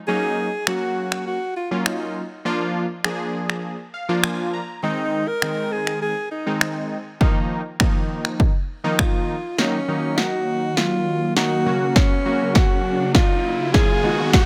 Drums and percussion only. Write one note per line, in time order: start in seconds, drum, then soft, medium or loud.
0.67 finger snap medium
1.12 finger snap medium
1.86 finger snap loud
3.04 finger snap medium
3.50 finger snap medium
4.24 finger snap loud
5.42 finger snap medium
5.87 finger snap medium
6.61 finger snap loud
7.21 kick loud
7.80 finger snap loud
7.80 kick loud
8.25 finger snap medium
8.40 kick loud
8.99 finger snap loud
8.99 kick loud
9.58 snare medium
10.18 snare medium
10.77 snare medium
11.37 snare medium
11.96 kick loud
11.96 snare medium
12.55 kick loud
12.55 snare medium
13.15 kick loud
13.15 snare medium
13.74 kick loud
13.74 snare medium
14.33 kick loud
14.33 snare medium